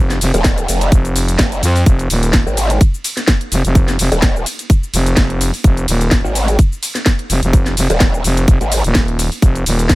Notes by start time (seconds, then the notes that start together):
Already playing: F1
0.10 snare, closed hi-hat, cabasa
0.21 F1, open hi-hat, ride, cabasa
0.34 D#1, closed hi-hat, cabasa
0.44 kick, snare, closed hi-hat, cabasa
0.58 closed hi-hat, cabasa
0.68 F1, open hi-hat, ride, cabasa
0.81 closed hi-hat, cabasa
0.92 F1, kick, closed hi-hat, cabasa
1.05 closed hi-hat, cabasa
1.16 open hi-hat, ride, cabasa
1.28 closed hi-hat, cabasa
1.39 F1, kick, snare, closed hi-hat, cabasa
1.52 closed hi-hat, cabasa
1.63 F2, open hi-hat, ride, cabasa
1.76 open hi-hat, cabasa
1.86 F1, kick, closed hi-hat, cabasa
1.99 closed hi-hat, cabasa
2.10 D#1, open hi-hat, ride, cabasa
2.23 closed hi-hat, cabasa
2.33 kick, snare, closed hi-hat, cabasa
2.46 G#1, cabasa
2.57 open hi-hat, ride, cabasa
2.70 closed hi-hat, cabasa
2.81 kick, closed hi-hat, cabasa
2.94 cabasa
3.04 open hi-hat, ride, cabasa
3.17 snare, closed hi-hat, cabasa
3.27 kick, snare, closed hi-hat, cabasa
3.41 closed hi-hat
3.52 F1, open hi-hat, ride, cabasa
3.65 F1, closed hi-hat, cabasa
3.75 kick, closed hi-hat, cabasa
3.88 snare, closed hi-hat, cabasa
3.99 F1, open hi-hat, ride, cabasa
4.12 D#1, closed hi-hat, cabasa
4.22 kick, snare, closed hi-hat, cabasa
4.36 cabasa
4.46 open hi-hat, ride, cabasa
4.59 closed hi-hat, cabasa
4.70 kick, closed hi-hat, cabasa
4.83 cabasa
4.93 F1, open hi-hat, ride, cabasa
5.06 closed hi-hat, cabasa
5.17 F1, kick, snare, closed hi-hat, cabasa
5.30 closed hi-hat
5.41 open hi-hat, ride, cabasa
5.54 open hi-hat, cabasa
5.64 F1, kick, closed hi-hat, cabasa
5.77 closed hi-hat, cabasa
5.88 D#1, open hi-hat, ride, cabasa
6.01 closed hi-hat, cabasa
6.11 kick, snare, closed hi-hat, cabasa
6.24 G#1, cabasa
6.35 open hi-hat, ride, cabasa
6.48 closed hi-hat, cabasa
6.59 kick, closed hi-hat, cabasa
6.72 cabasa
6.83 open hi-hat, ride, cabasa
6.95 snare, closed hi-hat, cabasa
7.06 kick, snare, closed hi-hat, cabasa
7.19 closed hi-hat
7.30 F1, open hi-hat, ride, cabasa
7.43 F1, closed hi-hat, cabasa
7.53 kick, closed hi-hat, cabasa
7.66 snare, closed hi-hat, cabasa
7.77 F1, open hi-hat, ride, cabasa
7.90 D#1, closed hi-hat, cabasa
8.00 kick, snare, closed hi-hat, cabasa
8.14 cabasa
8.24 F1, open hi-hat, ride, cabasa
8.37 closed hi-hat, cabasa
8.48 F1, kick, closed hi-hat, cabasa
8.61 G#1, closed hi-hat, cabasa
8.72 open hi-hat, ride, cabasa
8.84 D#1, closed hi-hat, cabasa
8.95 kick, snare, closed hi-hat, cabasa
9.08 closed hi-hat
9.19 open hi-hat, ride, cabasa
9.32 open hi-hat, cabasa
9.42 F1, kick, closed hi-hat, cabasa
9.55 closed hi-hat, cabasa
9.66 D#1, open hi-hat, ride, cabasa
9.79 closed hi-hat, cabasa
9.89 kick, snare, closed hi-hat, cabasa